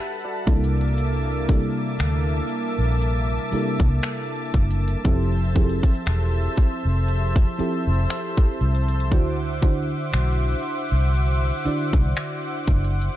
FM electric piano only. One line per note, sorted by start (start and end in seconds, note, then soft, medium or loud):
0.00 0.23 G4 medium
0.00 0.49 A4 medium
0.00 0.25 D5 medium
0.00 0.23 E5 medium
0.00 0.50 F#5 medium
0.00 0.49 A5 medium
0.00 0.50 B5 medium
0.25 0.73 F#4 medium
0.25 0.73 D5 medium
0.47 1.43 C3 medium
0.47 1.43 G3 medium
0.47 1.43 A#3 medium
0.47 1.43 D4 medium
0.47 1.43 E4 medium
0.47 1.44 A4 medium
1.48 3.40 C3 medium
1.48 3.40 G3 medium
1.48 3.40 A#3 medium
1.48 3.40 D4 medium
1.48 3.41 E4 medium
1.48 3.41 A4 medium
3.52 4.95 C3 medium
3.52 4.96 G3 medium
3.52 4.96 A#3 medium
3.52 4.96 D4 medium
3.52 4.96 E4 medium
3.52 4.97 A4 medium
5.04 5.52 F3 medium
5.04 5.53 C4 medium
5.04 5.53 E4 medium
5.04 5.53 G4 medium
5.04 5.54 A4 medium
5.55 7.47 F3 medium
5.55 7.47 C4 medium
5.55 7.47 E4 medium
5.55 7.47 G4 medium
5.55 5.64 G#4 medium
5.64 7.51 A4 medium
7.58 9.02 F3 medium
7.58 9.02 C4 medium
7.58 9.03 E4 medium
7.58 9.03 G4 medium
7.58 9.03 A4 medium
9.11 9.59 D3 medium
9.11 9.59 D4 medium
9.11 9.60 E4 medium
9.11 9.60 F#4 medium
9.11 9.60 C5 loud
9.62 11.53 D3 medium
9.62 11.54 D4 medium
9.62 11.54 E4 medium
9.62 11.54 F#4 medium
9.62 11.54 C5 medium
11.65 13.09 D3 medium
11.65 13.09 D4 medium
11.65 13.09 E4 medium
11.65 13.10 F#4 medium
11.65 13.10 D5 medium